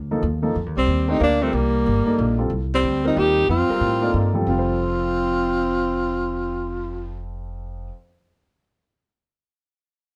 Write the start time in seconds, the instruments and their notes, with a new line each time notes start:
Already playing: upright bass D2
0.11 grand piano F3 A#3 D#4 A4
0.23 upright bass D#2
0.42 grand piano F3 A#3 D#4 A4
0.55 upright bass F2
0.66 upright bass D#2
0.77 upright bass C2, alto saxophone G3, tenor saxophone C4
0.87 upright bass D#2
1.08 grand piano A3 D4 G4 C5, alto saxophone C4, tenor saxophone D#4
1.20 upright bass D2, alto saxophone A#3, tenor saxophone D4
1.41 grand piano G3 C4 F4 A#4, alto saxophone A3, tenor saxophone C4
1.53 upright bass C2, alto saxophone G3, tenor saxophone A#3
1.86 upright bass G1
2.06 grand piano A#3 D#4 A4 D5, muted upright bass stroke
2.18 upright bass A#1
2.38 grand piano G3 C4 F4 A4
2.50 upright bass C2
2.74 alto saxophone G3, tenor saxophone C4
2.83 upright bass D2
3.04 grand piano G3 C4 F4 A#4, alto saxophone C4, tenor saxophone D#4
3.17 upright bass D#2, alto saxophone D#4, tenor saxophone G4
3.49 upright bass F2, alto saxophone C4, tenor saxophone F4
3.69 grand piano G3 C4 F4 A#4, muted upright bass stroke
3.81 upright bass A2
4.02 grand piano A#3 D#4 A4 D5
4.14 upright bass G2
4.34 grand piano F2 G3 C4 F4 A4
4.41 grand piano F3
4.47 upright bass F1, grand piano C4, alto saxophone C4, tenor saxophone F4
4.53 grand piano A4
4.59 grand piano C5